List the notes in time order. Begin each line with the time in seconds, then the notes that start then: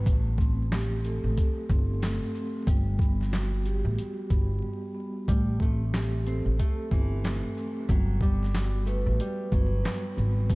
0.06 A1 A3, kick, closed hi-hat
0.38 C4, kick, shaker
0.72 G4, snare, clap, closed hi-hat
1.05 A4, closed hi-hat, shaker
1.24 A1
1.37 kick, closed hi-hat
1.69 G1 C4, kick, shaker
2.00 A3, snare, clap, closed hi-hat
2.34 C4, shaker
2.67 G1 G3, kick, closed hi-hat
2.99 B3, kick, shaker
3.21 snare
3.31 F#4, snare, clap, closed hi-hat
3.66 G4, closed hi-hat, shaker
3.85 A1
3.99 closed hi-hat
4.30 G1 B3, kick, closed hi-hat, shaker
4.62 G3
4.94 B3
5.28 A1 G3 A3, kick, closed hi-hat
5.60 A3 C4, kick, shaker
5.94 G4, snare, clap, closed hi-hat
6.26 C4 A4, closed hi-hat, shaker
6.46 A1
6.59 A3, kick, closed hi-hat
6.91 G1 E3 C4, kick, shaker
7.22 A3, snare, clap, closed hi-hat
7.56 C4, shaker
7.89 G1 F#3 G3, kick, closed hi-hat
8.21 G3 B3, kick, shaker
8.43 snare
8.53 F#4, snare, clap, closed hi-hat
8.86 A3 B4, closed hi-hat, shaker
9.06 A1
9.20 G3, closed hi-hat
9.52 G1 F#3 B3, kick, shaker
9.84 G3, snare, clap, closed hi-hat
10.16 G#1 B3, shaker
10.50 A1 A3, kick, closed hi-hat